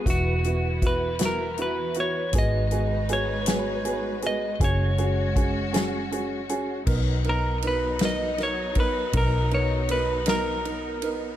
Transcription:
Already playing: B3 F#4
0.06 E1 E3 B3 E4 F#4, kick, closed hi-hat
0.10 F#4
0.44 B3 E4 F#4, closed hi-hat
0.82 B3 E4 F#4, kick, closed hi-hat
0.87 B4
1.19 B3 E4 F#4, snare, closed hi-hat
1.25 A#4
1.57 B3 E4 F#4, closed hi-hat
1.62 B4
1.94 B3 E4 F#4, closed hi-hat
2.00 C#5
2.33 G#1 G#3 B3 D#4 F#4 G#4 B4, kick, closed hi-hat
2.38 D#5
2.71 B3 F#4 G#4, closed hi-hat
3.09 B3 F#4 G#4, closed hi-hat
3.13 C#5
3.46 B3 F#4 G#4, snare, closed hi-hat
3.85 B3 F#4 G#4, closed hi-hat
4.22 B3 F#4 G#4, closed hi-hat
4.27 D#5
4.60 F#1 C#4 F#4 G#4, kick, closed hi-hat
4.64 C#5
4.98 C#4 F#4 G#4, closed hi-hat
5.36 C#4 F#4 G#4, kick, closed hi-hat
5.73 C#4 F#4 G#4, snare, closed hi-hat
6.11 C#4 F#4 G#4, closed hi-hat
6.49 C#4 F#4 G#4, closed hi-hat
6.86 B1 F#3 B3 D#4 A#4, kick, crash
7.24 B3 D#4 A#4, ride
7.29 A#4
7.62 B3 D#4 A#4, ride
7.67 B4
7.99 B3 D#4 A#4, snare, ride
8.05 D#5
8.38 D#4 A#4, snare, ride
8.43 C#5
8.75 B3 D#4 A#4, kick, ride
8.80 B4
9.13 B1 B3 D#4 A#4, kick, ride
9.17 A#4
9.51 B3 D#4 A#4 C#5, ride
9.89 B3 D#4 A#4 B4, ride
10.26 B3 D#4 A#4, snare, ride
10.65 D#4 A#4, ride
11.02 B3 D#4 A#4, ride

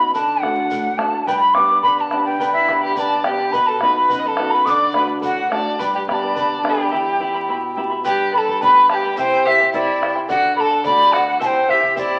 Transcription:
Already playing: F#2 B5
0.00 D#5 F#5
0.14 D3 A4 D5 F#5 A5, bombo low, shaker
0.41 A3 D4 F#4 A4 D5 F#5, bombo rim, bombo low
0.58 D5 F#5
0.71 A2 A4 D5 F#5, bombo low, shaker
0.98 A3 D4 F#4 A4 D5 F#5 A5, bombo rim
1.13 D5 F#5
1.26 G2 G4 B4 D5 G5 B5, bombo low, shaker
1.40 B5
1.54 B3 D4 G4 B4 D5 G5 B5 D6, bombo rim, bombo low
1.68 B4 D5 B5
1.82 D3 B4 D5 G5 B5, bombo low, shaker
1.97 A5 B5
2.10 B3 D4 G4 B4 D5 G5 B5, bombo rim
2.25 B4 D5 G5 B5
2.39 D3 G4 B4 D5 G5 B5, bombo low, shaker
2.53 E4 E5
2.67 B3 D4 G4 B4 D5 G5 B5, bombo rim, bombo low
2.81 G4 B4 D5 G5 B5
2.96 D3 B4 D5 G5 A5 B5, bombo low, shaker
3.24 B3 D4 G4 B4 D5 G5 B5, bombo rim
3.39 B4 D5 B5
3.52 B2 B4 D#5 F#5 B5, bombo low, shaker
3.67 A4 A5
3.81 B3 D#4 F#4 B4 D#5 F#5 B5, bombo rim, bombo low
3.95 B4 D#5 F#5 B5
4.08 F#2 B4 D#5 F#5, bombo low, shaker
4.17 D#5 B5
4.25 A4 A5 B5
4.37 B3 D#4 F#4 B4 D#5 F#5, bombo rim
4.51 B4 D#5 F#5 B5
4.65 D3 A4 D5 F#5 D#6, bombo low, shaker
4.69 D5 D6
4.93 A3 D4 F#4 A4 B4 D5 F#5 B5, bombo rim, bombo low
5.07 D5 F#5
5.21 A2 A4 D5 F#5, bombo low, shaker
5.26 F#4
5.49 A3 D4 F#4 A4 D5 F#5 A5, bombo rim
5.53 D5
5.64 D5 F#5
5.79 G2 G4 B4 D5 G5 B5, bombo low, shaker
5.94 G4 G5
6.07 B3 D4 G4 B4 D5 G5 B5, bombo rim, bombo low
6.13 A5
6.22 B4 D5 B5
6.34 D3 B4 D5 G5 B5, bombo low, shaker
6.63 B3 D4 G4 B4 D5 G5 B5, bombo rim
6.69 G4
6.77 B4 D5 B5
6.91 E2 E4 G4 E5 G5 B5
7.20 B3 E4 G4 E5 G5 B5
7.34 E4 E5 B5
7.48 B2 E4 E5 G5 B5
7.76 B3 E4 G4 E5 G5 B5
7.90 E4 E5 B5
8.04 G2 G4 B4 D5 G5 B5, bombo low, shaker
8.31 A4 B4 D5 G5 B5, bombo low
8.38 A5
8.46 B4 D5 B5, bombo low
8.61 B3 D4 G4 B4 D5 G5 B5, bombo low, shaker
8.89 G4 B4 D5 G5 A5 B5, bombo rim
8.94 G5
9.04 B4 D5 B5
9.17 C3 E4 G4 C5 E5 G5, bombo low, shaker
9.45 E4 G4 C5 E5 G5, bombo low
9.61 E4 C5 G5, bombo low
9.73 C4 E4 G4 C5 D5 E5 G5, bombo low, shaker
10.01 E4 C5 E5 G5, bombo rim
10.15 E4 C5 G5
10.29 D3 F#4 A4 D5 F#5, bombo low, shaker
10.56 A4 D5 F#5 B5, bombo low
10.60 A5
10.71 D5 F#5
10.83 A3 D4 F#4 A4 D5 F#5 B5, bombo low, shaker
11.12 F#4 A4 D5 F#5, bombo rim
11.26 D5 F#5
11.40 C3 E4 G4 C5 E5 G5 A5, bombo low, shaker
11.46 G5
11.68 E4 G4 C5 E5 G5, bombo low
11.81 E4 C5 G5, bombo low
11.96 C4 E4 G4 C5 D5 E5 G5, bombo low, shaker

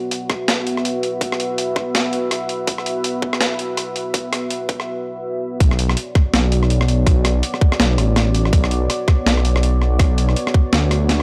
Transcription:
Already playing: B3 F#4 B4 E5
0.11 closed hi-hat
0.30 kick, cross-stick
0.48 snare, closed hi-hat
0.67 closed hi-hat
0.77 cross-stick
0.85 closed hi-hat
1.03 closed hi-hat
1.21 kick, closed hi-hat
1.32 cross-stick
1.40 closed hi-hat
1.58 closed hi-hat
1.76 kick, cross-stick
1.95 snare, closed hi-hat
2.13 closed hi-hat
2.31 cross-stick, closed hi-hat
2.49 closed hi-hat
2.67 kick, closed hi-hat
2.78 cross-stick
2.86 closed hi-hat
3.04 closed hi-hat
3.22 kick
3.33 cross-stick
3.41 snare, closed hi-hat
3.59 closed hi-hat
3.77 cross-stick, closed hi-hat
3.96 closed hi-hat
4.14 kick, closed hi-hat
4.33 cross-stick, closed hi-hat
4.50 closed hi-hat
4.69 kick, closed hi-hat
4.80 cross-stick
5.60 B1 B3 F#4 C#5 D5, kick, closed hi-hat
5.71 cross-stick
5.79 closed hi-hat
5.89 cross-stick
5.97 closed hi-hat
6.15 kick, cross-stick
6.34 B1, cross-stick, snare, closed hi-hat
6.52 closed hi-hat
6.63 cross-stick
6.70 closed hi-hat
6.81 cross-stick
6.88 closed hi-hat
7.07 B1, kick, cross-stick, closed hi-hat
7.25 cross-stick, closed hi-hat
7.43 closed hi-hat
7.54 cross-stick
7.61 kick
7.72 cross-stick
7.80 B1, snare, closed hi-hat
7.98 A1, cross-stick, closed hi-hat
8.16 cross-stick, snare, closed hi-hat
8.35 closed hi-hat
8.45 cross-stick
8.53 B1, kick, closed hi-hat
8.64 cross-stick
8.71 closed hi-hat
8.90 cross-stick, closed hi-hat
9.08 kick, cross-stick
9.26 B1, snare, closed hi-hat
9.37 cross-stick
9.45 closed hi-hat
9.56 cross-stick
9.63 closed hi-hat
9.82 cross-stick
9.99 B1, kick, cross-stick, closed hi-hat
10.18 closed hi-hat
10.29 cross-stick
10.36 closed hi-hat
10.47 cross-stick
10.54 kick
10.73 D2, cross-stick, snare, closed hi-hat
10.91 cross-stick, closed hi-hat
11.09 snare, closed hi-hat

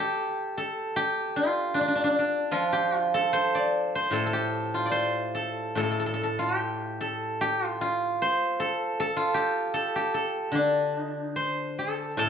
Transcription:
Already playing: G4 A4 C5
0.58 A4
0.96 G4
1.36 F4
1.74 D4
1.81 D4
1.88 D4
1.95 D4
2.04 D4
2.10 D4
2.19 D4
2.51 F3 F4
2.73 G4
2.97 F4
3.14 A4
3.33 C5
3.55 D5
3.95 C5
4.11 A2 A4
4.26 A4
4.33 G4
4.74 F4
4.86 D5
4.92 C5
5.35 A4
5.75 A2 A4
5.83 A4
5.91 A4
6.00 A4
6.06 A4
6.14 A4
6.23 A4
6.39 F4
6.56 G4
7.01 A4
7.41 G4
7.65 F4
7.81 F4
8.22 C5
8.60 A4
9.00 A4
9.17 F4
9.34 G4
9.74 A4
9.96 G4
10.14 A4
10.52 D3 D4
10.98 D#4
11.09 D4
11.22 D#4
11.34 D4 C5
11.79 A4
12.17 A2 A4

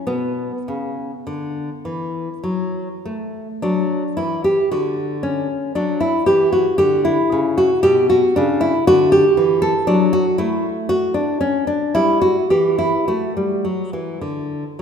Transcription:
0.07 B2 B3
0.68 C#3
1.27 D3
1.85 E3
2.44 F#3
3.05 A3
3.62 F#3 D4
4.17 E3 E4
4.44 G4
4.72 D3 F#4
5.23 C#4
5.75 F#3 D4
6.00 E4
6.26 E3 G4
6.53 F#4
6.78 D3 G4
7.05 E4
7.32 C#3
7.58 F#4
7.83 B2 G4
8.10 F#4
8.36 C#3 D4
8.61 E4
8.87 D3 F#4
9.12 G4
9.37 E3
9.62 A4
9.87 F#3 D4
10.13 F#4
10.38 A3 E4
10.89 F#4
11.14 D4
11.41 C#4
11.67 D4
11.95 G3 E4
12.21 F#4
12.50 E3 G4
12.78 E4
13.08 A3 F#4
13.37 G3
13.65 F#3
13.93 E3
14.21 D3

